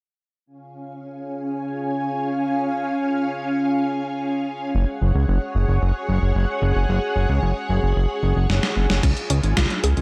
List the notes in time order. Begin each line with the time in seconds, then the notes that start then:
0.46 C#4 C#5 F5 G#5
4.75 F#1 G#4 C#5 F#5
5.01 F#1
5.15 C#2
5.28 F#1
5.55 F#1
5.68 F#1
5.82 F#1
6.09 F#1
6.22 F#1
6.35 F#1
6.62 F#1
6.76 F#1
6.89 F#1
7.16 F#1
7.29 C#2
7.42 F#1
7.69 F#1
7.83 F#1
7.96 F#1
8.23 F#1
8.36 F#1
8.50 F#1, snare
8.63 snare
8.76 F#1
8.90 F#1, snare
9.03 C#2 C#4 F4 G#4 C#5, kick, closed hi-hat, crash
9.17 closed hi-hat
9.30 C#2 C#4, closed hi-hat
9.43 G#1, closed hi-hat
9.57 C#2 F4, kick, snare, closed hi-hat
9.70 closed hi-hat
9.84 C#2 G#4, closed hi-hat
9.97 C#2, closed hi-hat